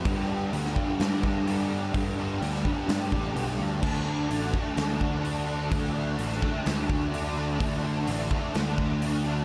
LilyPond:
<<
  \new Staff \with { instrumentName = "Distorted electric guitar" } { \clef bass \time 4/4 \key d \dorian \tempo 4 = 127 <g, d g>8 <d g>8 <g, d g>8 <d g>8 <g, d g>8 <d g>8 <g, d g>8 <d g>8 | <g, d g>8 <d g>8 <g, d g>8 <d g>8 <g, d g>8 <d g>8 <g, d g>8 <d g>8 | <d a d'>8 <a d'>8 <d a d'>8 <a d'>8 <d a d'>8 <a d'>8 <d a d'>8 <a d'>8 | <d a d'>8 <a d'>8 <d a d'>8 <a d'>8 <d a d'>8 <a d'>8 <d a d'>8 <a d'>8 |
<d a d'>8 <a d'>8 <d a d'>8 <a d'>8 <d a d'>8 <a d'>8 <d a d'>8 <a d'>8 | }
  \new Staff \with { instrumentName = "Picked electric bass" } { \clef bass \time 4/4 \key d \dorian g,4 d,8 r8 g,2 | g,4 d,8 r8 g,8 a,,8 b,,8 d,8 | d,4 a,,8 r8 d,2 | d,4 a,,8 r8 d,2 |
d,4 a,,8 r8 d,2 | }
  \new DrumStaff \with { instrumentName = "Drums" } \drummode { \time 4/4 <hho bd>4 hho16 sn16 bd8 <hho sn>8 bd8 hho4 | <hho bd>4 hho16 sn16 bd8 <hho sn>8 bd8 hho4 | <cymc bd>4 hho8 bd8 <hho sn>8 bd8 hho4 | <hho bd>4 hho16 sn16 bd8 <hho sn>8 bd8 hho4 |
<hho bd>4 hho8 bd8 <hho sn>8 bd8 hho4 | }
>>